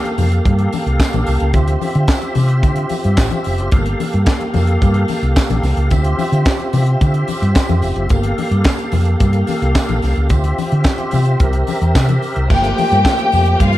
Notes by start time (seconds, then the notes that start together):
Already playing: A#3 G4 A4 F5
0.04 closed hi-hat, muted conga
0.18 F2, open hi-hat, tambourine, high conga, low conga
0.32 closed hi-hat
0.45 G2, kick, closed hi-hat, low conga
0.59 closed hi-hat, muted conga
0.73 open hi-hat, tambourine, high conga
0.86 C2, closed hi-hat
1.00 kick, snare, clap, closed hi-hat, tambourine
1.13 A#1, closed hi-hat, muted conga, high conga
1.27 C2, open hi-hat, tambourine
1.40 C#2, closed hi-hat
1.53 D2 C4 F4 E5, kick, closed hi-hat, tambourine, low conga
1.68 closed hi-hat, muted conga
1.81 open hi-hat, tambourine, high conga
1.95 D3, closed hi-hat
2.08 kick, snare, clap, closed hi-hat, tambourine
2.21 closed hi-hat, muted conga
2.35 C3, open hi-hat, tambourine, high conga, low conga
2.48 closed hi-hat
2.63 D3, kick, closed hi-hat, tambourine, low conga
2.76 closed hi-hat, muted conga
2.89 open hi-hat, tambourine, high conga
3.04 G2, closed hi-hat
3.17 A1, kick, snare, clap, closed hi-hat, tambourine
3.30 closed hi-hat, muted conga, high conga
3.44 F1, open hi-hat, tambourine
3.58 F#1, closed hi-hat
3.72 G1 A#3 A4 F5, kick, closed hi-hat, tambourine, low conga
3.86 closed hi-hat, muted conga
4.00 open hi-hat, tambourine, high conga
4.13 G2, closed hi-hat
4.26 kick, snare, clap, closed hi-hat, tambourine, muted conga
4.41 closed hi-hat, muted conga
4.54 F2, open hi-hat, tambourine, high conga, low conga
4.67 closed hi-hat
4.82 G2, kick, closed hi-hat, tambourine, low conga
4.94 closed hi-hat, muted conga
5.08 open hi-hat, tambourine, high conga
5.23 C2, closed hi-hat
5.36 kick, snare, clap, closed hi-hat, tambourine, muted conga
5.50 A#1, closed hi-hat, muted conga, high conga
5.63 C2, snare, open hi-hat, tambourine
5.77 C#2, closed hi-hat
5.90 D2 C4 F4 E5, kick, closed hi-hat, tambourine, muted conga, low conga
6.04 closed hi-hat
6.19 open hi-hat, tambourine, high conga
6.32 D3, closed hi-hat
6.45 kick, snare, clap, closed hi-hat, tambourine
6.59 closed hi-hat, muted conga
6.73 C3, open hi-hat, tambourine, high conga, low conga
6.86 closed hi-hat
7.01 D3, kick, closed hi-hat, tambourine, low conga
7.14 closed hi-hat
7.28 open hi-hat, tambourine, high conga
7.42 G2, closed hi-hat
7.55 kick, snare, clap, closed hi-hat, tambourine
7.69 F2, closed hi-hat, muted conga, high conga
7.82 F1, open hi-hat, tambourine
7.96 F#1, closed hi-hat
8.09 G1 A#3 G4 A4 F5, kick, closed hi-hat, tambourine, muted conga, low conga
8.23 closed hi-hat, muted conga
8.38 open hi-hat, high conga
8.51 G2, closed hi-hat
8.64 kick, snare, clap, closed hi-hat, tambourine
8.79 closed hi-hat
8.92 F2, open hi-hat, tambourine, high conga, low conga
9.05 closed hi-hat
9.20 G2, kick, closed hi-hat, tambourine, muted conga, low conga
9.33 closed hi-hat, muted conga
9.47 open hi-hat, tambourine, high conga
9.62 C2, closed hi-hat
9.75 kick, snare, clap, closed hi-hat, tambourine, muted conga
9.89 A#1, closed hi-hat, high conga
10.02 C2, snare, open hi-hat, tambourine
10.16 C#2, closed hi-hat
10.29 D2 C4 F4 E5, kick, closed hi-hat, tambourine, muted conga, low conga
10.44 closed hi-hat, muted conga
10.58 open hi-hat, tambourine, high conga
10.72 D3, closed hi-hat
10.84 kick, snare, clap, closed hi-hat, tambourine, muted conga
10.98 closed hi-hat, muted conga
11.11 C3, open hi-hat, tambourine, high conga, low conga
11.25 closed hi-hat
11.39 C2 A#4 E5, kick, closed hi-hat, low conga
11.53 closed hi-hat
11.67 open hi-hat, tambourine, high conga
11.82 E2, closed hi-hat
11.95 C3, kick, snare, clap, closed hi-hat, tambourine, muted conga
12.09 closed hi-hat, muted conga, high conga
12.22 open hi-hat, tambourine
12.36 C2, closed hi-hat
12.50 G1 F3 A3 A#3 G4 G5, kick, crash, tambourine, low conga
12.64 closed hi-hat, muted conga
12.78 open hi-hat, high conga
12.92 G2, closed hi-hat
13.05 kick, snare, clap, closed hi-hat, tambourine, muted conga
13.18 closed hi-hat, muted conga
13.32 F2, open hi-hat, tambourine, low conga
13.46 closed hi-hat
13.60 G2 F4 F5, kick, closed hi-hat, tambourine, low conga
13.73 closed hi-hat, muted conga